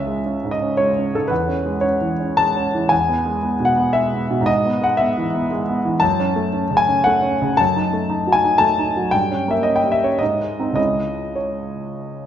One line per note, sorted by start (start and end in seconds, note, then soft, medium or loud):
0.00 1.26 C#2 soft
0.00 0.18 C#4 soft
0.00 0.51 E5 medium
0.07 0.36 G#3 soft
0.26 0.54 C#4 soft
0.44 0.72 G#2 soft
0.51 0.78 D#5 medium
0.62 0.90 C#4 soft
0.77 1.07 G#3 soft
0.77 1.17 C#5 medium
0.98 1.24 C#4 soft
1.14 1.31 G#2 soft
1.14 1.29 A4 medium
1.28 2.87 E2 soft
1.28 1.82 B4 medium
1.48 1.77 C#4 soft
1.66 1.95 G#3 soft
1.81 2.12 C#4 soft
1.81 2.36 C#5 medium
2.01 2.30 E3 soft
2.20 2.49 C#4 soft
2.37 2.67 G#3 soft
2.37 2.91 A5 medium
2.56 2.85 C#4 soft
2.75 2.92 E3 soft
2.89 4.44 E2 medium
2.89 3.69 G#5 medium
3.08 3.36 B3 soft
3.26 3.54 G#3 soft
3.43 3.71 B3 soft
3.60 3.88 B2 soft
3.65 3.93 F#5 medium
3.76 4.05 B3 soft
3.93 4.23 G#3 soft
3.93 4.46 E5 medium
4.13 4.41 B3 soft
4.31 4.48 B2 soft
4.41 5.94 G#2 medium
4.46 4.86 D#5 medium
4.66 4.93 B3 soft
4.81 5.09 G#3 soft
4.81 4.98 F#5 medium
4.97 5.27 B3 soft
4.97 5.49 E5 medium
5.17 5.44 E3 soft
5.34 5.61 B3 soft
5.51 5.78 G#3 medium
5.68 5.95 B3 soft
5.85 6.02 E3 soft
6.00 7.55 F#2 medium
6.00 6.79 A5 medium
6.20 6.47 C#4 soft
6.36 6.64 A3 soft
6.53 6.81 C#4 soft
6.71 6.99 C#3 soft
6.77 7.04 G#5 medium
6.88 7.16 C#4 soft
7.04 7.34 A3 soft
7.04 7.58 F#5 medium
7.22 7.51 C#4 soft
7.42 7.59 C#3 soft
7.57 9.10 F#2 medium
7.57 8.35 A5 medium
7.76 8.04 D#4 soft
7.93 8.21 A3 soft
8.10 8.37 D#4 soft
8.27 8.54 F#3 soft
8.32 8.60 G#5 medium
8.44 8.72 D#4 soft
8.58 8.89 A3 soft
8.58 9.12 A5 medium
8.79 9.06 D#4 soft
8.97 9.14 F#3 soft
9.11 10.17 G2 soft
9.11 9.51 G5 medium
9.31 9.59 C#4 soft
9.48 9.76 A#3 soft
9.48 9.65 E5 medium
9.63 9.94 C#4 soft
9.63 9.78 D#5 medium
9.76 9.91 G5 medium
9.84 10.13 G3 soft
9.92 10.06 E5 medium
10.03 10.21 C#4 soft
10.03 10.19 C#5 medium
10.19 10.76 G#2 soft
10.19 10.74 D#5 medium
10.40 10.70 G#3 soft
10.59 10.76 C4 soft
10.59 10.76 D#4 soft
10.73 12.26 C#2 soft
10.73 12.26 G#3 soft
10.73 12.26 C#4 soft
10.73 12.26 E4 soft
10.73 11.37 D#5 medium
11.36 12.23 C#5 soft